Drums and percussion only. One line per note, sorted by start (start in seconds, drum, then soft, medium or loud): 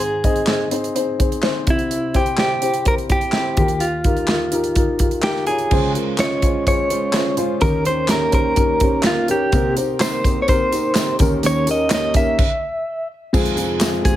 0.00 closed hi-hat medium
0.24 kick medium
0.24 closed hi-hat medium
0.36 closed hi-hat soft
0.47 snare medium
0.47 clap medium
0.71 closed hi-hat medium
0.84 closed hi-hat soft
0.96 closed hi-hat medium
1.20 kick medium
1.20 closed hi-hat medium
1.32 closed hi-hat soft
1.43 snare medium
1.43 clap medium
1.67 kick loud
1.67 closed hi-hat medium
1.79 closed hi-hat soft
1.91 closed hi-hat medium
2.14 kick medium
2.14 closed hi-hat medium
2.26 closed hi-hat soft
2.37 snare medium
2.37 clap medium
2.62 closed hi-hat medium
2.74 closed hi-hat soft
2.85 kick medium
2.85 closed hi-hat medium
2.98 closed hi-hat soft
3.10 kick medium
3.10 closed hi-hat medium
3.21 closed hi-hat soft
3.32 snare medium
3.32 clap medium
3.57 kick loud
3.57 closed hi-hat medium
3.68 closed hi-hat soft
3.80 closed hi-hat medium
4.04 kick medium
4.04 closed hi-hat medium
4.17 closed hi-hat soft
4.28 snare medium
4.28 clap medium
4.52 closed hi-hat medium
4.64 closed hi-hat soft
4.75 kick medium
4.75 closed hi-hat medium
4.99 kick medium
4.99 closed hi-hat medium
5.11 closed hi-hat soft
5.22 snare medium
5.22 clap medium
5.36 snare soft
5.47 closed hi-hat medium
5.58 closed hi-hat soft
5.71 kick loud
5.71 crash medium
5.95 closed hi-hat medium
6.18 snare medium
6.18 clap medium
6.18 closed hi-hat medium
6.42 kick medium
6.42 closed hi-hat medium
6.67 kick medium
6.67 closed hi-hat medium
6.90 closed hi-hat medium
7.13 snare loud
7.13 clap medium
7.13 closed hi-hat medium
7.37 closed hi-hat medium
7.61 kick loud
7.61 closed hi-hat medium
7.85 closed hi-hat medium
8.08 snare medium
8.08 clap medium
8.08 closed hi-hat loud
8.32 kick medium
8.32 closed hi-hat medium
8.56 kick medium
8.56 closed hi-hat medium
8.80 kick medium
8.80 closed hi-hat medium
9.03 snare loud
9.03 clap medium
9.03 closed hi-hat medium
9.28 closed hi-hat medium
9.52 kick loud
9.52 closed hi-hat medium
9.52 tambourine soft
9.77 closed hi-hat medium
9.77 tambourine soft
10.00 snare medium
10.00 clap medium
10.00 closed hi-hat loud
10.00 tambourine medium
10.24 kick medium
10.24 closed hi-hat medium
10.24 tambourine soft
10.48 kick medium
10.48 closed hi-hat medium
10.48 tambourine soft
10.72 closed hi-hat medium
10.72 tambourine soft
10.95 snare medium
10.95 clap medium
10.95 closed hi-hat medium
10.95 tambourine medium
11.19 kick loud
11.19 closed hi-hat medium
11.19 tambourine soft
11.43 closed hi-hat medium
11.43 tambourine soft
11.67 closed hi-hat medium
11.67 tambourine soft
11.90 snare medium
11.90 clap medium
11.90 closed hi-hat medium
11.90 tambourine medium
12.14 kick medium
12.14 closed hi-hat medium
12.14 tambourine soft
12.39 kick loud
12.39 crash medium
13.34 kick loud
13.34 crash medium
13.34 tambourine soft
13.45 closed hi-hat medium
13.57 closed hi-hat medium
13.57 tambourine soft
13.81 snare loud
13.81 clap medium
13.81 closed hi-hat medium
13.81 tambourine medium
14.05 kick medium
14.05 closed hi-hat medium
14.05 tambourine soft